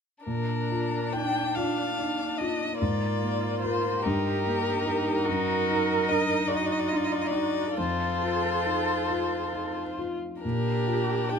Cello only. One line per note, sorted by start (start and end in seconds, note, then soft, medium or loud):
0.25 2.76 D4 soft
2.78 4.01 F4 soft
4.03 5.27 G4 soft
5.25 6.50 A#4 medium
6.49 6.92 F#4 soft
6.91 7.33 F4 soft
7.31 7.74 F#4 soft
7.75 9.71 A4 soft
10.42 11.39 G4 soft